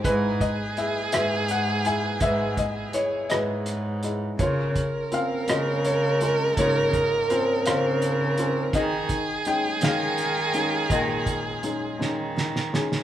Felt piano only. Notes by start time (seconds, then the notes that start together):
0.05 G#3 E4 B4
0.41 D#5
0.78 E4 G#4 E5
1.13 E4 G#4 B4 E5
1.51 F#5
1.85 E4 G#4 E5 G#5
2.22 G#3 B4 E5
2.58 D#5
2.94 E4 G#4 C#5 D#5
3.30 E4 G#4 B4 D#5
4.03 E4 G#4 D#5
4.39 C#3 F4 C#5
5.12 C4 C#4 F4 F5
5.49 G#3 C#4 F4 D#5
5.86 C#5
6.21 G#3 C#4 F4
6.58 G#2 F4 C#5
7.30 C4 C#4 F4 C5
7.67 C4 C#4 F4 C5 F5
8.38 C4 C#4 F4
8.74 D#3 G#4 D#5
9.46 G#3 C#4 D#4 G5
9.81 G#3 C#4 D#4 G#4 F5
10.54 G#3 C#4 D#4
10.91 A#2 G#4 D#5
11.63 G#3 C#4 D#4
11.99 G#3 C#4 D#4
12.73 G#3 C#4 D#4 G#4